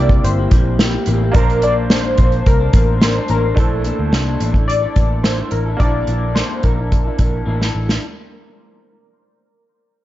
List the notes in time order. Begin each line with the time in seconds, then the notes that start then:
Already playing: C2 C3 A#3 E4 G4 C5 D5
0.00 G4
0.09 kick
0.24 G1 C5, closed hi-hat
0.37 A#3 E4 G4
0.51 A#1 C3 A#3 E4 G4, kick, closed hi-hat
0.79 C3 A#3 E4 G4, snare, closed hi-hat
0.92 A#3 E4 G4
1.06 A1 C3 A#3 E4, closed hi-hat
1.10 G4
1.20 A#3 E4 G4
1.32 A#1 A#3 D4 A5, kick, closed hi-hat
1.36 A4 A#4 C5
1.50 closed hi-hat
1.62 A#3 D4 A4 C5 D5, closed hi-hat
1.89 A#3 D4 A4 C5, snare, closed hi-hat
2.17 A#1 A#3 D4 A4 C5, kick, closed hi-hat
2.32 closed hi-hat
2.46 C2 A#4, kick, closed hi-hat
2.59 D4 A4 C5
2.72 A1 A#3 D4 A4 C5, kick, closed hi-hat
3.00 A#3 D4 A4 C5, snare, closed hi-hat
3.14 D4 A4 C5
3.28 A1 A#3 D4 A4 A#4 C5, closed hi-hat
3.43 D4 A4 C5
3.54 A#1 A3 A#3 D4 E4 A4, kick, closed hi-hat
3.59 E4 A4 C5
3.84 A#3 D4 E4 A4, closed hi-hat
3.99 D2
4.12 C2 A#3 D4 E4 A4, snare, closed hi-hat
4.39 A1 A#3 D4 E4 A4, closed hi-hat
4.54 D4 E4 A4, kick
4.68 D5, closed hi-hat
4.81 D4 E4 A4
4.95 A1 A#3 D4 E4 A4, kick, closed hi-hat
5.24 A#3 D4 E4 A4 C5, snare, closed hi-hat
5.38 D4 E4 A4
5.51 A1 A#4, closed hi-hat
5.66 D4 E4 A4
5.77 A#1 A#3 D4 E4 D5, kick, closed hi-hat
5.81 E4 A4 A5
6.07 A#1 A#3 D4 E4 A4, closed hi-hat
6.35 A#3 D4 E4 A4 C5, snare, closed hi-hat
6.62 A#1 A#3 D4 E4 A4 A#4, kick, closed hi-hat
6.76 D4 E4 A4
6.92 kick, closed hi-hat
7.04 D4 E4 A4
7.18 A#1 A#3 D4 E4 A4, kick, closed hi-hat
7.46 A1 A#3 D4 E4 A4
7.59 D4 E4 A4, snare
7.75 A1
7.87 D4 E4 A4, snare